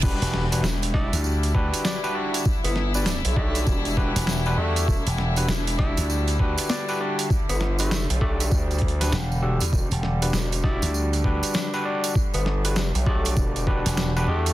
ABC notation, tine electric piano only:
X:1
M:4/4
L:1/16
Q:"Swing 16ths" 1/4=99
K:Em
V:1 name="Tine electric piano"
[DFGB]3 [DFGB] z2 [DFGd]4 [DFGB]3 [DFGB] [DFGd]2 | z3 [DFGB] z2 [DFGd]4 [DFGB]3 [DFGB] [DFGd]2 | z3 [DFGB] z2 [DFGd]4 [DFGB]3 [DFGB] [DFGd]2 | z3 [DFGB] z2 [DFGd]4 z [DFGB] z2 [DFGA] z |
z3 [DFGB] z2 [DFGd]4 [DFGB]3 [DFGB] [DFGd]2 | z3 [DFGB] z2 [DFGd]4 [DFGB]3 [DFGB] [DFGd]2 |]